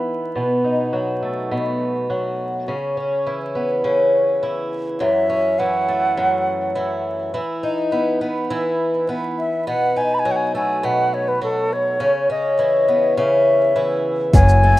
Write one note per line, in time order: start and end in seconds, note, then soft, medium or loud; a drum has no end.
0.00 0.41 E3 medium
0.00 1.22 B3 medium
0.00 0.64 D#4 soft
0.35 1.50 B2 medium
0.64 2.74 D#4 medium
0.93 2.09 F#3 medium
1.22 2.74 A3 soft
1.51 2.68 B2 medium
2.10 2.74 F#3 medium
2.68 3.83 C#3 medium
2.97 5.29 C#4 medium
3.26 4.42 E3 medium
3.55 5.07 B3 medium
3.84 5.07 C#3 medium
4.43 5.59 E3 medium
5.00 6.16 F#2 medium
5.00 5.60 E5 medium
5.30 7.40 C#4 medium
5.59 6.75 E3 medium
5.59 7.05 F#5 medium
5.88 7.40 A3 medium
6.17 7.40 F#2 medium
6.75 7.33 E3 medium
7.34 8.49 E3 medium
7.63 9.96 D#4 medium
7.92 8.21 B3 medium
8.21 9.08 B3 medium
8.50 9.73 E3 medium
9.09 10.54 B3 medium
9.38 9.65 E5 medium
9.67 10.82 B2 medium
9.67 9.99 F#5 medium
9.96 12.06 D#4 medium
9.96 10.15 G#5 medium
10.14 10.20 B5 medium
10.19 10.32 G#5 medium
10.25 11.40 F#3 medium
10.31 10.37 F#5 medium
10.36 10.55 G#5 medium
10.55 12.06 A3 medium
10.55 10.86 G#5 medium
10.83 12.00 B2 medium
10.83 11.15 F#5 medium
11.14 11.30 C#5 medium
11.28 11.42 B4 medium
11.42 12.06 F#3 medium
11.42 11.74 A4 medium
11.73 12.30 C#5 medium
12.00 13.16 C#3 medium
12.30 14.80 C#4 medium
12.30 13.14 D#5 medium
12.59 13.75 E3 medium
12.88 14.39 B3 medium
13.17 14.39 C#3 medium
13.17 14.01 E5 medium
13.76 14.80 E3 medium
14.33 14.73 F#1 medium
14.33 14.80 F#2 medium
14.33 14.80 G#5 loud
14.33 kick loud
14.33 open hi-hat soft
14.33 shaker soft
14.49 shaker soft
14.63 14.80 A3 medium